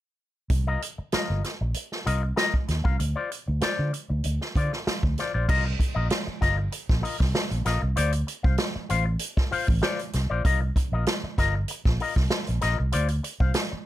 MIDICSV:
0, 0, Header, 1, 6, 480
1, 0, Start_track
1, 0, Tempo, 621762
1, 387, Time_signature, 4, 2, 24, 8
1, 10699, End_track
2, 0, Start_track
2, 0, Title_t, "Clean electric guitar"
2, 0, Program_c, 0, 27
2, 518, Note_on_c, 0, 75, 78
2, 523, Note_on_c, 0, 70, 65
2, 525, Note_on_c, 0, 65, 64
2, 625, Note_off_c, 0, 65, 0
2, 629, Note_off_c, 0, 75, 0
2, 631, Note_off_c, 0, 70, 0
2, 869, Note_on_c, 0, 65, 69
2, 874, Note_on_c, 0, 70, 65
2, 879, Note_on_c, 0, 75, 72
2, 1092, Note_off_c, 0, 65, 0
2, 1094, Note_off_c, 0, 70, 0
2, 1097, Note_off_c, 0, 75, 0
2, 1587, Note_on_c, 0, 65, 80
2, 1592, Note_on_c, 0, 70, 74
2, 1595, Note_on_c, 0, 75, 87
2, 1713, Note_off_c, 0, 75, 0
2, 1716, Note_off_c, 0, 65, 0
2, 1716, Note_off_c, 0, 70, 0
2, 1824, Note_on_c, 0, 65, 77
2, 1828, Note_on_c, 0, 70, 80
2, 1832, Note_on_c, 0, 75, 89
2, 1955, Note_off_c, 0, 65, 0
2, 1957, Note_off_c, 0, 70, 0
2, 1959, Note_off_c, 0, 75, 0
2, 2191, Note_on_c, 0, 77, 60
2, 2194, Note_on_c, 0, 70, 56
2, 2198, Note_on_c, 0, 65, 53
2, 2284, Note_off_c, 0, 77, 0
2, 2285, Note_off_c, 0, 70, 0
2, 2287, Note_off_c, 0, 65, 0
2, 2437, Note_on_c, 0, 74, 71
2, 2438, Note_on_c, 0, 72, 64
2, 2442, Note_on_c, 0, 65, 57
2, 2548, Note_off_c, 0, 65, 0
2, 2550, Note_off_c, 0, 72, 0
2, 2551, Note_off_c, 0, 74, 0
2, 2787, Note_on_c, 0, 65, 77
2, 2793, Note_on_c, 0, 72, 74
2, 2801, Note_on_c, 0, 74, 77
2, 3013, Note_off_c, 0, 65, 0
2, 3016, Note_off_c, 0, 72, 0
2, 3020, Note_off_c, 0, 74, 0
2, 3519, Note_on_c, 0, 65, 63
2, 3523, Note_on_c, 0, 72, 65
2, 3528, Note_on_c, 0, 74, 79
2, 3643, Note_off_c, 0, 74, 0
2, 3644, Note_off_c, 0, 65, 0
2, 3646, Note_off_c, 0, 72, 0
2, 4006, Note_on_c, 0, 65, 69
2, 4007, Note_on_c, 0, 72, 68
2, 4015, Note_on_c, 0, 74, 69
2, 4100, Note_off_c, 0, 65, 0
2, 4100, Note_off_c, 0, 72, 0
2, 4104, Note_off_c, 0, 74, 0
2, 4125, Note_on_c, 0, 74, 60
2, 4127, Note_on_c, 0, 72, 62
2, 4131, Note_on_c, 0, 65, 53
2, 4212, Note_off_c, 0, 74, 0
2, 4213, Note_off_c, 0, 72, 0
2, 4215, Note_off_c, 0, 65, 0
2, 4233, Note_on_c, 0, 65, 89
2, 4241, Note_on_c, 0, 70, 77
2, 4243, Note_on_c, 0, 75, 92
2, 4354, Note_off_c, 0, 75, 0
2, 4361, Note_off_c, 0, 65, 0
2, 4365, Note_off_c, 0, 70, 0
2, 4591, Note_on_c, 0, 75, 63
2, 4599, Note_on_c, 0, 70, 60
2, 4604, Note_on_c, 0, 65, 50
2, 4685, Note_off_c, 0, 75, 0
2, 4689, Note_off_c, 0, 70, 0
2, 4691, Note_off_c, 0, 65, 0
2, 4948, Note_on_c, 0, 65, 76
2, 4954, Note_on_c, 0, 70, 71
2, 4956, Note_on_c, 0, 75, 82
2, 5069, Note_off_c, 0, 75, 0
2, 5075, Note_off_c, 0, 70, 0
2, 5078, Note_off_c, 0, 65, 0
2, 5420, Note_on_c, 0, 65, 60
2, 5426, Note_on_c, 0, 75, 65
2, 5427, Note_on_c, 0, 70, 64
2, 5526, Note_off_c, 0, 65, 0
2, 5529, Note_off_c, 0, 70, 0
2, 5529, Note_off_c, 0, 75, 0
2, 5907, Note_on_c, 0, 65, 92
2, 5912, Note_on_c, 0, 70, 92
2, 5918, Note_on_c, 0, 75, 86
2, 6028, Note_off_c, 0, 75, 0
2, 6036, Note_off_c, 0, 65, 0
2, 6037, Note_off_c, 0, 70, 0
2, 6145, Note_on_c, 0, 65, 72
2, 6149, Note_on_c, 0, 72, 95
2, 6154, Note_on_c, 0, 74, 92
2, 6267, Note_off_c, 0, 74, 0
2, 6272, Note_off_c, 0, 72, 0
2, 6275, Note_off_c, 0, 65, 0
2, 6510, Note_on_c, 0, 77, 60
2, 6516, Note_on_c, 0, 72, 53
2, 6521, Note_on_c, 0, 65, 50
2, 6602, Note_off_c, 0, 77, 0
2, 6605, Note_off_c, 0, 72, 0
2, 6608, Note_off_c, 0, 65, 0
2, 6865, Note_on_c, 0, 65, 81
2, 6872, Note_on_c, 0, 72, 89
2, 6876, Note_on_c, 0, 77, 91
2, 6988, Note_off_c, 0, 77, 0
2, 6990, Note_off_c, 0, 72, 0
2, 6994, Note_off_c, 0, 65, 0
2, 7343, Note_on_c, 0, 65, 75
2, 7347, Note_on_c, 0, 72, 80
2, 7351, Note_on_c, 0, 77, 76
2, 7464, Note_off_c, 0, 77, 0
2, 7467, Note_off_c, 0, 72, 0
2, 7472, Note_off_c, 0, 65, 0
2, 7579, Note_on_c, 0, 65, 92
2, 7586, Note_on_c, 0, 72, 94
2, 7592, Note_on_c, 0, 74, 91
2, 7710, Note_off_c, 0, 65, 0
2, 7714, Note_off_c, 0, 72, 0
2, 7716, Note_off_c, 0, 74, 0
2, 7950, Note_on_c, 0, 74, 63
2, 7955, Note_on_c, 0, 72, 59
2, 7960, Note_on_c, 0, 65, 60
2, 8040, Note_off_c, 0, 74, 0
2, 8043, Note_off_c, 0, 72, 0
2, 8045, Note_off_c, 0, 65, 0
2, 8064, Note_on_c, 0, 65, 76
2, 8072, Note_on_c, 0, 70, 78
2, 8076, Note_on_c, 0, 75, 83
2, 8179, Note_off_c, 0, 75, 0
2, 8187, Note_off_c, 0, 70, 0
2, 8192, Note_off_c, 0, 65, 0
2, 8436, Note_on_c, 0, 75, 58
2, 8444, Note_on_c, 0, 70, 48
2, 8446, Note_on_c, 0, 65, 49
2, 8523, Note_off_c, 0, 75, 0
2, 8527, Note_off_c, 0, 70, 0
2, 8528, Note_off_c, 0, 65, 0
2, 8784, Note_on_c, 0, 65, 72
2, 8789, Note_on_c, 0, 70, 80
2, 8792, Note_on_c, 0, 75, 90
2, 8910, Note_off_c, 0, 75, 0
2, 8911, Note_off_c, 0, 65, 0
2, 8914, Note_off_c, 0, 70, 0
2, 9267, Note_on_c, 0, 65, 52
2, 9271, Note_on_c, 0, 70, 58
2, 9279, Note_on_c, 0, 75, 68
2, 9365, Note_off_c, 0, 65, 0
2, 9367, Note_off_c, 0, 70, 0
2, 9371, Note_off_c, 0, 75, 0
2, 9737, Note_on_c, 0, 65, 68
2, 9737, Note_on_c, 0, 70, 81
2, 9744, Note_on_c, 0, 75, 97
2, 9862, Note_off_c, 0, 75, 0
2, 9866, Note_off_c, 0, 70, 0
2, 9867, Note_off_c, 0, 65, 0
2, 9976, Note_on_c, 0, 65, 73
2, 9982, Note_on_c, 0, 72, 78
2, 9984, Note_on_c, 0, 74, 77
2, 10094, Note_off_c, 0, 74, 0
2, 10100, Note_off_c, 0, 72, 0
2, 10106, Note_off_c, 0, 65, 0
2, 10345, Note_on_c, 0, 77, 59
2, 10347, Note_on_c, 0, 72, 57
2, 10352, Note_on_c, 0, 65, 45
2, 10435, Note_off_c, 0, 77, 0
2, 10436, Note_off_c, 0, 72, 0
2, 10439, Note_off_c, 0, 65, 0
2, 10699, End_track
3, 0, Start_track
3, 0, Title_t, "Fingered electric bass"
3, 0, Program_c, 1, 33
3, 388, Note_on_c, 1, 36, 91
3, 580, Note_off_c, 1, 36, 0
3, 1004, Note_on_c, 1, 31, 83
3, 1092, Note_off_c, 1, 31, 0
3, 1242, Note_on_c, 1, 34, 79
3, 1331, Note_off_c, 1, 34, 0
3, 1594, Note_on_c, 1, 36, 78
3, 1786, Note_off_c, 1, 36, 0
3, 2074, Note_on_c, 1, 39, 68
3, 2176, Note_off_c, 1, 39, 0
3, 2203, Note_on_c, 1, 36, 72
3, 2293, Note_off_c, 1, 36, 0
3, 2315, Note_on_c, 1, 38, 88
3, 2417, Note_off_c, 1, 38, 0
3, 2688, Note_on_c, 1, 38, 91
3, 2776, Note_off_c, 1, 38, 0
3, 2926, Note_on_c, 1, 50, 81
3, 3015, Note_off_c, 1, 50, 0
3, 3166, Note_on_c, 1, 38, 98
3, 3255, Note_off_c, 1, 38, 0
3, 3283, Note_on_c, 1, 38, 73
3, 3382, Note_off_c, 1, 38, 0
3, 3520, Note_on_c, 1, 50, 102
3, 3620, Note_off_c, 1, 50, 0
3, 3886, Note_on_c, 1, 38, 88
3, 3975, Note_off_c, 1, 38, 0
3, 4128, Note_on_c, 1, 34, 88
3, 4216, Note_off_c, 1, 34, 0
3, 4239, Note_on_c, 1, 36, 83
3, 4430, Note_off_c, 1, 36, 0
3, 4602, Note_on_c, 1, 34, 91
3, 4693, Note_off_c, 1, 34, 0
3, 4957, Note_on_c, 1, 31, 84
3, 5148, Note_off_c, 1, 31, 0
3, 5324, Note_on_c, 1, 34, 82
3, 5413, Note_off_c, 1, 34, 0
3, 5561, Note_on_c, 1, 36, 103
3, 5652, Note_off_c, 1, 36, 0
3, 5799, Note_on_c, 1, 34, 98
3, 5890, Note_off_c, 1, 34, 0
3, 5912, Note_on_c, 1, 34, 92
3, 6014, Note_off_c, 1, 34, 0
3, 6041, Note_on_c, 1, 36, 78
3, 6131, Note_off_c, 1, 36, 0
3, 6157, Note_on_c, 1, 38, 99
3, 6347, Note_off_c, 1, 38, 0
3, 6522, Note_on_c, 1, 36, 87
3, 6611, Note_off_c, 1, 36, 0
3, 6876, Note_on_c, 1, 33, 96
3, 7066, Note_off_c, 1, 33, 0
3, 7478, Note_on_c, 1, 33, 97
3, 7567, Note_off_c, 1, 33, 0
3, 7831, Note_on_c, 1, 36, 95
3, 7932, Note_off_c, 1, 36, 0
3, 7956, Note_on_c, 1, 34, 69
3, 8046, Note_off_c, 1, 34, 0
3, 8069, Note_on_c, 1, 36, 93
3, 8260, Note_off_c, 1, 36, 0
3, 8431, Note_on_c, 1, 34, 86
3, 8522, Note_off_c, 1, 34, 0
3, 8788, Note_on_c, 1, 31, 88
3, 8979, Note_off_c, 1, 31, 0
3, 9154, Note_on_c, 1, 34, 93
3, 9243, Note_off_c, 1, 34, 0
3, 9391, Note_on_c, 1, 36, 89
3, 9481, Note_off_c, 1, 36, 0
3, 9640, Note_on_c, 1, 34, 96
3, 9727, Note_off_c, 1, 34, 0
3, 9753, Note_on_c, 1, 34, 97
3, 9851, Note_off_c, 1, 34, 0
3, 9880, Note_on_c, 1, 36, 79
3, 9967, Note_off_c, 1, 36, 0
3, 9993, Note_on_c, 1, 38, 91
3, 10181, Note_off_c, 1, 38, 0
3, 10349, Note_on_c, 1, 36, 77
3, 10440, Note_off_c, 1, 36, 0
3, 10699, End_track
4, 0, Start_track
4, 0, Title_t, "Muted clean electric guitar strokes"
4, 391, Note_on_c, 9, 29, 29
4, 468, Note_off_c, 9, 29, 0
4, 635, Note_on_c, 9, 29, 29
4, 712, Note_off_c, 9, 29, 0
4, 759, Note_on_c, 9, 29, 36
4, 836, Note_off_c, 9, 29, 0
4, 1114, Note_on_c, 9, 29, 39
4, 1191, Note_off_c, 9, 29, 0
4, 1245, Note_on_c, 9, 29, 41
4, 1322, Note_off_c, 9, 29, 0
4, 1362, Note_on_c, 9, 29, 35
4, 1440, Note_off_c, 9, 29, 0
4, 1487, Note_on_c, 9, 29, 50
4, 1564, Note_off_c, 9, 29, 0
4, 1722, Note_on_c, 9, 29, 38
4, 1799, Note_off_c, 9, 29, 0
4, 2070, Note_on_c, 9, 29, 42
4, 2147, Note_off_c, 9, 29, 0
4, 2306, Note_on_c, 9, 29, 37
4, 2383, Note_off_c, 9, 29, 0
4, 2557, Note_on_c, 9, 29, 43
4, 2634, Note_off_c, 9, 29, 0
4, 2683, Note_on_c, 9, 29, 38
4, 2760, Note_off_c, 9, 29, 0
4, 3032, Note_on_c, 9, 29, 35
4, 3110, Note_off_c, 9, 29, 0
4, 3161, Note_on_c, 9, 29, 43
4, 3239, Note_off_c, 9, 29, 0
4, 3277, Note_on_c, 9, 29, 34
4, 3354, Note_off_c, 9, 29, 0
4, 3410, Note_on_c, 9, 29, 51
4, 3487, Note_off_c, 9, 29, 0
4, 3757, Note_on_c, 9, 29, 42
4, 3834, Note_off_c, 9, 29, 0
4, 3891, Note_on_c, 9, 29, 45
4, 3969, Note_off_c, 9, 29, 0
4, 4363, Note_on_c, 9, 29, 40
4, 4440, Note_off_c, 9, 29, 0
4, 4470, Note_on_c, 9, 29, 38
4, 4547, Note_off_c, 9, 29, 0
4, 4839, Note_on_c, 9, 29, 47
4, 4917, Note_off_c, 9, 29, 0
4, 5078, Note_on_c, 9, 29, 42
4, 5155, Note_off_c, 9, 29, 0
4, 5188, Note_on_c, 9, 29, 37
4, 5265, Note_off_c, 9, 29, 0
4, 5557, Note_on_c, 9, 29, 50
4, 5634, Note_off_c, 9, 29, 0
4, 5666, Note_on_c, 9, 29, 43
4, 5744, Note_off_c, 9, 29, 0
4, 5793, Note_on_c, 9, 29, 50
4, 5871, Note_off_c, 9, 29, 0
4, 6037, Note_on_c, 9, 29, 41
4, 6115, Note_off_c, 9, 29, 0
4, 6276, Note_on_c, 9, 29, 47
4, 6353, Note_off_c, 9, 29, 0
4, 6385, Note_on_c, 9, 29, 34
4, 6462, Note_off_c, 9, 29, 0
4, 6757, Note_on_c, 9, 29, 55
4, 6835, Note_off_c, 9, 29, 0
4, 6991, Note_on_c, 9, 29, 54
4, 7068, Note_off_c, 9, 29, 0
4, 7232, Note_on_c, 9, 29, 59
4, 7309, Note_off_c, 9, 29, 0
4, 7467, Note_on_c, 9, 29, 42
4, 7544, Note_off_c, 9, 29, 0
4, 7826, Note_on_c, 9, 29, 42
4, 7903, Note_off_c, 9, 29, 0
4, 8189, Note_on_c, 9, 29, 52
4, 8266, Note_off_c, 9, 29, 0
4, 8310, Note_on_c, 9, 29, 43
4, 8388, Note_off_c, 9, 29, 0
4, 8680, Note_on_c, 9, 29, 41
4, 8758, Note_off_c, 9, 29, 0
4, 9036, Note_on_c, 9, 29, 46
4, 9113, Note_off_c, 9, 29, 0
4, 9393, Note_on_c, 9, 29, 40
4, 9470, Note_off_c, 9, 29, 0
4, 9504, Note_on_c, 9, 29, 47
4, 9581, Note_off_c, 9, 29, 0
4, 9633, Note_on_c, 9, 29, 51
4, 9710, Note_off_c, 9, 29, 0
4, 9871, Note_on_c, 9, 29, 43
4, 9948, Note_off_c, 9, 29, 0
4, 10104, Note_on_c, 9, 29, 40
4, 10181, Note_off_c, 9, 29, 0
4, 10216, Note_on_c, 9, 29, 40
4, 10294, Note_off_c, 9, 29, 0
4, 10587, Note_on_c, 9, 29, 42
4, 10664, Note_off_c, 9, 29, 0
4, 10699, End_track
5, 0, Start_track
5, 0, Title_t, "Muted fingered electric bass strokes"
5, 760, Note_on_c, 9, 29, 43
5, 838, Note_off_c, 9, 29, 0
5, 875, Note_on_c, 9, 29, 44
5, 952, Note_off_c, 9, 29, 0
5, 2801, Note_on_c, 9, 29, 44
5, 2878, Note_off_c, 9, 29, 0
5, 3762, Note_on_c, 9, 29, 43
5, 3839, Note_off_c, 9, 29, 0
5, 4844, Note_on_c, 9, 29, 54
5, 4921, Note_off_c, 9, 29, 0
5, 6761, Note_on_c, 9, 29, 56
5, 6838, Note_off_c, 9, 29, 0
5, 7353, Note_on_c, 9, 29, 46
5, 7431, Note_off_c, 9, 29, 0
5, 8673, Note_on_c, 9, 29, 51
5, 8750, Note_off_c, 9, 29, 0
5, 10598, Note_on_c, 9, 29, 49
5, 10675, Note_off_c, 9, 29, 0
5, 10699, End_track
6, 0, Start_track
6, 0, Title_t, "Drums"
6, 384, Note_on_c, 9, 42, 87
6, 386, Note_on_c, 9, 36, 101
6, 461, Note_off_c, 9, 42, 0
6, 463, Note_off_c, 9, 36, 0
6, 635, Note_on_c, 9, 42, 77
6, 712, Note_off_c, 9, 42, 0
6, 866, Note_on_c, 9, 42, 78
6, 871, Note_on_c, 9, 38, 92
6, 943, Note_off_c, 9, 42, 0
6, 949, Note_off_c, 9, 38, 0
6, 1114, Note_on_c, 9, 42, 64
6, 1115, Note_on_c, 9, 38, 36
6, 1192, Note_off_c, 9, 42, 0
6, 1193, Note_off_c, 9, 38, 0
6, 1346, Note_on_c, 9, 42, 88
6, 1423, Note_off_c, 9, 42, 0
6, 1482, Note_on_c, 9, 38, 37
6, 1559, Note_off_c, 9, 38, 0
6, 1596, Note_on_c, 9, 42, 75
6, 1673, Note_off_c, 9, 42, 0
6, 1832, Note_on_c, 9, 38, 100
6, 1837, Note_on_c, 9, 42, 75
6, 1909, Note_off_c, 9, 38, 0
6, 1914, Note_off_c, 9, 42, 0
6, 1959, Note_on_c, 9, 36, 83
6, 2036, Note_off_c, 9, 36, 0
6, 2072, Note_on_c, 9, 42, 56
6, 2079, Note_on_c, 9, 38, 26
6, 2149, Note_off_c, 9, 42, 0
6, 2156, Note_off_c, 9, 38, 0
6, 2200, Note_on_c, 9, 36, 101
6, 2277, Note_off_c, 9, 36, 0
6, 2314, Note_on_c, 9, 42, 82
6, 2391, Note_off_c, 9, 42, 0
6, 2560, Note_on_c, 9, 42, 67
6, 2637, Note_off_c, 9, 42, 0
6, 2790, Note_on_c, 9, 42, 78
6, 2795, Note_on_c, 9, 38, 86
6, 2867, Note_off_c, 9, 42, 0
6, 2873, Note_off_c, 9, 38, 0
6, 3039, Note_on_c, 9, 42, 64
6, 3116, Note_off_c, 9, 42, 0
6, 3271, Note_on_c, 9, 42, 78
6, 3348, Note_off_c, 9, 42, 0
6, 3407, Note_on_c, 9, 38, 33
6, 3484, Note_off_c, 9, 38, 0
6, 3517, Note_on_c, 9, 36, 84
6, 3522, Note_on_c, 9, 42, 72
6, 3594, Note_off_c, 9, 36, 0
6, 3600, Note_off_c, 9, 42, 0
6, 3650, Note_on_c, 9, 38, 29
6, 3727, Note_off_c, 9, 38, 0
6, 3761, Note_on_c, 9, 38, 100
6, 3766, Note_on_c, 9, 42, 70
6, 3839, Note_off_c, 9, 38, 0
6, 3843, Note_off_c, 9, 42, 0
6, 3884, Note_on_c, 9, 36, 89
6, 3962, Note_off_c, 9, 36, 0
6, 3996, Note_on_c, 9, 42, 62
6, 4003, Note_on_c, 9, 38, 30
6, 4073, Note_off_c, 9, 42, 0
6, 4080, Note_off_c, 9, 38, 0
6, 4237, Note_on_c, 9, 36, 116
6, 4238, Note_on_c, 9, 49, 88
6, 4314, Note_off_c, 9, 36, 0
6, 4315, Note_off_c, 9, 49, 0
6, 4475, Note_on_c, 9, 36, 87
6, 4480, Note_on_c, 9, 42, 77
6, 4552, Note_off_c, 9, 36, 0
6, 4557, Note_off_c, 9, 42, 0
6, 4711, Note_on_c, 9, 42, 85
6, 4717, Note_on_c, 9, 38, 109
6, 4789, Note_off_c, 9, 42, 0
6, 4794, Note_off_c, 9, 38, 0
6, 4955, Note_on_c, 9, 36, 74
6, 4956, Note_on_c, 9, 42, 71
6, 4957, Note_on_c, 9, 38, 37
6, 5033, Note_off_c, 9, 36, 0
6, 5033, Note_off_c, 9, 42, 0
6, 5034, Note_off_c, 9, 38, 0
6, 5189, Note_on_c, 9, 42, 89
6, 5267, Note_off_c, 9, 42, 0
6, 5322, Note_on_c, 9, 38, 41
6, 5323, Note_on_c, 9, 36, 101
6, 5399, Note_off_c, 9, 38, 0
6, 5400, Note_off_c, 9, 36, 0
6, 5440, Note_on_c, 9, 46, 78
6, 5517, Note_off_c, 9, 46, 0
6, 5561, Note_on_c, 9, 36, 90
6, 5564, Note_on_c, 9, 38, 34
6, 5638, Note_off_c, 9, 36, 0
6, 5641, Note_off_c, 9, 38, 0
6, 5674, Note_on_c, 9, 38, 113
6, 5678, Note_on_c, 9, 42, 81
6, 5751, Note_off_c, 9, 38, 0
6, 5755, Note_off_c, 9, 42, 0
6, 5800, Note_on_c, 9, 42, 49
6, 5877, Note_off_c, 9, 42, 0
6, 5910, Note_on_c, 9, 42, 66
6, 5917, Note_on_c, 9, 38, 33
6, 5987, Note_off_c, 9, 42, 0
6, 5994, Note_off_c, 9, 38, 0
6, 6149, Note_on_c, 9, 42, 101
6, 6227, Note_off_c, 9, 42, 0
6, 6272, Note_on_c, 9, 42, 57
6, 6349, Note_off_c, 9, 42, 0
6, 6392, Note_on_c, 9, 42, 79
6, 6469, Note_off_c, 9, 42, 0
6, 6519, Note_on_c, 9, 36, 98
6, 6596, Note_off_c, 9, 36, 0
6, 6622, Note_on_c, 9, 42, 88
6, 6628, Note_on_c, 9, 38, 112
6, 6699, Note_off_c, 9, 42, 0
6, 6705, Note_off_c, 9, 38, 0
6, 6868, Note_on_c, 9, 42, 74
6, 6945, Note_off_c, 9, 42, 0
6, 7097, Note_on_c, 9, 42, 101
6, 7174, Note_off_c, 9, 42, 0
6, 7236, Note_on_c, 9, 36, 90
6, 7236, Note_on_c, 9, 38, 39
6, 7313, Note_off_c, 9, 36, 0
6, 7313, Note_off_c, 9, 38, 0
6, 7352, Note_on_c, 9, 46, 77
6, 7429, Note_off_c, 9, 46, 0
6, 7475, Note_on_c, 9, 36, 92
6, 7552, Note_off_c, 9, 36, 0
6, 7587, Note_on_c, 9, 38, 109
6, 7591, Note_on_c, 9, 42, 85
6, 7664, Note_off_c, 9, 38, 0
6, 7668, Note_off_c, 9, 42, 0
6, 7713, Note_on_c, 9, 42, 54
6, 7790, Note_off_c, 9, 42, 0
6, 7823, Note_on_c, 9, 42, 63
6, 7830, Note_on_c, 9, 38, 30
6, 7900, Note_off_c, 9, 42, 0
6, 7907, Note_off_c, 9, 38, 0
6, 8066, Note_on_c, 9, 42, 98
6, 8067, Note_on_c, 9, 36, 107
6, 8143, Note_off_c, 9, 42, 0
6, 8144, Note_off_c, 9, 36, 0
6, 8306, Note_on_c, 9, 36, 90
6, 8309, Note_on_c, 9, 42, 80
6, 8383, Note_off_c, 9, 36, 0
6, 8387, Note_off_c, 9, 42, 0
6, 8542, Note_on_c, 9, 42, 87
6, 8548, Note_on_c, 9, 38, 108
6, 8619, Note_off_c, 9, 42, 0
6, 8625, Note_off_c, 9, 38, 0
6, 8786, Note_on_c, 9, 36, 73
6, 8788, Note_on_c, 9, 42, 77
6, 8789, Note_on_c, 9, 38, 37
6, 8864, Note_off_c, 9, 36, 0
6, 8865, Note_off_c, 9, 42, 0
6, 8866, Note_off_c, 9, 38, 0
6, 9016, Note_on_c, 9, 42, 88
6, 9094, Note_off_c, 9, 42, 0
6, 9151, Note_on_c, 9, 38, 39
6, 9152, Note_on_c, 9, 36, 95
6, 9228, Note_off_c, 9, 38, 0
6, 9229, Note_off_c, 9, 36, 0
6, 9264, Note_on_c, 9, 46, 77
6, 9341, Note_off_c, 9, 46, 0
6, 9389, Note_on_c, 9, 38, 32
6, 9390, Note_on_c, 9, 36, 82
6, 9467, Note_off_c, 9, 36, 0
6, 9467, Note_off_c, 9, 38, 0
6, 9499, Note_on_c, 9, 38, 110
6, 9504, Note_on_c, 9, 42, 75
6, 9577, Note_off_c, 9, 38, 0
6, 9581, Note_off_c, 9, 42, 0
6, 9626, Note_on_c, 9, 42, 55
6, 9703, Note_off_c, 9, 42, 0
6, 9738, Note_on_c, 9, 42, 64
6, 9745, Note_on_c, 9, 38, 31
6, 9815, Note_off_c, 9, 42, 0
6, 9822, Note_off_c, 9, 38, 0
6, 9977, Note_on_c, 9, 42, 96
6, 10054, Note_off_c, 9, 42, 0
6, 10100, Note_on_c, 9, 42, 53
6, 10178, Note_off_c, 9, 42, 0
6, 10222, Note_on_c, 9, 42, 79
6, 10299, Note_off_c, 9, 42, 0
6, 10348, Note_on_c, 9, 36, 91
6, 10425, Note_off_c, 9, 36, 0
6, 10452, Note_on_c, 9, 42, 83
6, 10458, Note_on_c, 9, 38, 101
6, 10529, Note_off_c, 9, 42, 0
6, 10535, Note_off_c, 9, 38, 0
6, 10699, End_track
0, 0, End_of_file